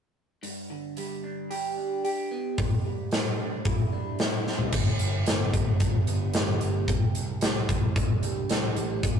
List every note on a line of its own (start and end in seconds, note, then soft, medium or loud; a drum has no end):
0.43 1.78 G2 medium
0.43 open hi-hat soft
0.70 2.05 D3 medium
0.97 2.85 G3 medium
0.97 open hi-hat soft
1.24 1.77 D4 medium
1.50 2.04 G4 medium
1.50 open hi-hat soft
1.77 2.61 D4 medium
2.04 3.66 G4 medium
2.04 open hi-hat soft
2.31 2.58 B3 medium
2.58 3.93 C3 medium
2.58 kick medium
2.58 open hi-hat soft
2.85 3.11 G3 medium
3.11 4.47 G3 medium
3.11 snare loud
3.11 open hi-hat soft
3.40 3.91 D4 medium
3.65 4.19 E4 medium
3.65 kick loud
3.65 open hi-hat soft
3.92 4.73 D4 medium
4.19 4.74 E4 medium
4.19 snare medium
4.19 open hi-hat soft
4.47 4.74 C4 medium
4.47 snare soft
4.59 floor tom medium
4.72 4.94 G1 medium
4.72 6.08 G2 medium
4.72 kick medium
4.72 crash medium
4.99 5.21 G1 medium
4.99 closed hi-hat medium
5.26 5.48 G1 medium
5.26 6.07 B3 medium
5.26 snare loud
5.26 closed hi-hat medium
5.54 5.75 G1 medium
5.54 6.34 G3 medium
5.54 kick medium
5.54 closed hi-hat medium
5.80 6.02 G1 medium
5.80 6.92 D4 medium
5.80 kick loud
5.80 closed hi-hat medium
6.07 6.29 G1 medium
6.07 6.61 B3 medium
6.07 closed hi-hat medium
6.33 6.56 G1 medium
6.33 6.89 G3 medium
6.33 snare loud
6.33 closed hi-hat medium
6.61 6.83 G1 medium
6.61 6.89 B3 medium
6.61 closed hi-hat medium
6.88 7.09 C2 medium
6.88 8.23 C3 medium
6.88 kick loud
6.88 closed hi-hat medium
7.15 7.37 C2 medium
7.15 closed hi-hat medium
7.41 7.63 C2 medium
7.41 8.21 G3 medium
7.41 snare loud
7.41 closed hi-hat medium
7.69 7.90 C2 medium
7.69 8.49 E3 medium
7.69 kick medium
7.69 closed hi-hat medium
7.96 8.17 C2 medium
7.96 9.03 D4 medium
7.96 kick loud
7.96 closed hi-hat medium
8.22 8.44 C2 medium
8.22 8.76 G3 medium
8.22 closed hi-hat medium
8.49 8.71 C2 medium
8.49 9.04 E3 medium
8.49 snare medium
8.49 closed hi-hat medium
8.76 8.98 A1 medium
8.76 9.04 G3 medium
8.76 closed hi-hat medium
9.03 9.20 A#1 medium
9.03 9.20 A#2 medium
9.03 kick medium
9.03 closed hi-hat medium